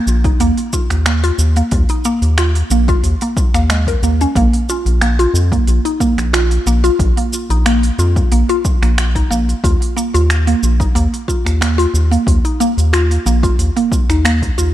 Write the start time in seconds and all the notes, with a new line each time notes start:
Already playing: A#3
0.07 A#1, shaker
0.24 D#4, kick, open hi-hat, shaker
0.40 D#2 A#3, open hi-hat, shaker
0.57 open hi-hat, shaker
0.73 F4, kick, shaker
0.90 D#2, finger snap, open hi-hat, shaker
1.06 A#3, finger snap, open hi-hat, shaker
1.24 F4, open hi-hat, shaker
1.38 D#2, shaker
1.56 A#3, open hi-hat, shaker
1.71 D#2, kick, open hi-hat, shaker
1.89 D#4, open hi-hat, shaker
2.05 A#3, shaker
2.22 D#2, open hi-hat, shaker
2.38 F4, finger snap, open hi-hat, shaker
2.55 open hi-hat, shaker
2.70 A#1 A#3, shaker
2.88 F4, kick, open hi-hat, shaker
3.03 D#2, open hi-hat, shaker
3.21 A#3, open hi-hat, shaker
3.37 kick, shaker
3.54 D#2 A#3, finger snap, open hi-hat, shaker
3.70 G#3, finger snap, open hi-hat, shaker
3.87 A#4, kick, open hi-hat, shaker
4.02 D#2 A#3, shaker
4.21 C#4, open hi-hat, shaker
4.35 A#1 A#3, kick, open hi-hat, shaker
4.53 open hi-hat, shaker
4.69 F4, shaker
4.85 A#1, open hi-hat, shaker
5.01 A#3, finger snap, open hi-hat, shaker
5.19 F4, open hi-hat, shaker
5.34 F2, shaker
5.52 A#3, kick, open hi-hat, shaker
5.67 A#1, open hi-hat, shaker
5.85 D#4, open hi-hat, shaker
6.00 A#3, kick, shaker
6.17 A#1, finger snap, open hi-hat, shaker
6.33 F4, finger snap, open hi-hat, shaker
6.51 open hi-hat, shaker
6.66 A#1 A#3, shaker
6.84 F4, open hi-hat, shaker
6.99 A#1, kick, open hi-hat, shaker
7.17 A#3, open hi-hat, shaker
7.33 shaker
7.50 A#1 D#4, open hi-hat, shaker
7.66 A#3, finger snap, open hi-hat, shaker
7.83 open hi-hat, shaker
7.98 F2 F4, shaker
8.16 kick, open hi-hat, shaker
8.32 A#1 A#3, open hi-hat, shaker
8.49 F4, open hi-hat, shaker
8.65 kick, shaker
8.82 A#1 A#3, finger snap, open hi-hat, shaker
8.98 finger snap, open hi-hat, shaker
9.15 D#4, kick, open hi-hat, shaker
9.30 A#1 A#3, shaker
9.49 open hi-hat, shaker
9.64 D#2 F4, kick, open hi-hat, shaker
9.82 open hi-hat, shaker
9.97 A#3, shaker
10.14 D#2 F4, open hi-hat, shaker
10.30 finger snap, open hi-hat, shaker
10.47 A#3, open hi-hat, shaker
10.63 A#1, shaker
10.80 D#4, kick, open hi-hat, shaker
10.95 D#2 A#3, open hi-hat, shaker
11.14 open hi-hat, shaker
11.28 F4, kick, shaker
11.46 D#2, finger snap, open hi-hat, shaker
11.61 A#3, finger snap, open hi-hat, shaker
11.78 F4, open hi-hat, shaker
11.94 D#2, shaker
12.11 A#3, open hi-hat, shaker
12.27 D#2, kick, open hi-hat, shaker
12.45 D#4, open hi-hat, shaker
12.60 A#3, shaker
12.77 D#2, open hi-hat, shaker
12.93 F4, finger snap, open hi-hat, shaker
13.11 open hi-hat, shaker
13.26 A#1 A#3, shaker
13.43 F4, kick, open hi-hat, shaker
13.58 D#2, open hi-hat, shaker
13.77 A#3, open hi-hat, shaker
13.92 kick, shaker
14.09 D#2 D#4, finger snap, open hi-hat, shaker
14.25 A#3, finger snap, open hi-hat, shaker
14.42 kick, open hi-hat, shaker
14.58 D#2 F4, shaker